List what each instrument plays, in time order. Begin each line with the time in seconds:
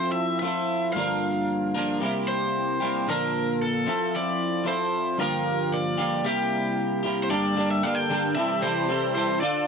Already playing: clean electric guitar F3 C4 E4 A4, overdriven electric guitar C5
0.12 overdriven electric guitar E5
0.39 clean electric guitar F3 C4, overdriven electric guitar E5
0.44 clean electric guitar E4 A4
0.93 clean electric guitar G2 D3 F3 A#3 D4, overdriven electric guitar F5
0.98 clean electric guitar A#4
1.74 clean electric guitar G2 D3 F3 A#3 D4 A#4
2.00 clean electric guitar C3 G3 A#3 E4 G4
2.28 overdriven electric guitar C5
2.80 clean electric guitar C3 G3 A#3 E4 G4
3.07 clean electric guitar A#2 D3 F3 A#3 D4 A4, overdriven electric guitar A#4
3.62 overdriven electric guitar A4
3.86 clean electric guitar F3 C4 E4 A4
4.16 overdriven electric guitar D5
4.64 clean electric guitar F3 C4 E4 A4
4.68 overdriven electric guitar C5
5.18 clean electric guitar G2 D3 F3 A#3 F4 G4, overdriven electric guitar A#4
5.74 overdriven electric guitar D5
5.98 clean electric guitar G2 D3 F3 A#3 F4 G4
6.23 clean electric guitar C3 G3 A#3 E4 G4, overdriven electric guitar G4
7.03 clean electric guitar C3 G3 A#3 E4 G4
7.24 overdriven electric guitar C5
7.29 clean electric guitar G2 D3 G3 A#3 D4 A4, overdriven electric guitar D5
7.55 clean electric guitar G2 D3 G3 A#3 D4 A4
7.71 overdriven electric guitar E5
7.83 clean electric guitar G2 D3 G3 A#3 D4 A4, overdriven electric guitar F5
7.95 overdriven electric guitar G5
8.09 clean electric guitar G2 D3 G3 A#3 D4 A4
8.35 clean electric guitar C3 E3 G3 E4 A4, overdriven electric guitar E5
8.62 clean electric guitar C3 E3 G3 E4 A4, overdriven electric guitar C5
8.89 clean electric guitar C3 E3 G3 E4 A4
9.15 clean electric guitar C3 E3 G3 E4 A4, overdriven electric guitar C5
9.41 clean electric guitar D3 D4 F4 A4, overdriven electric guitar D5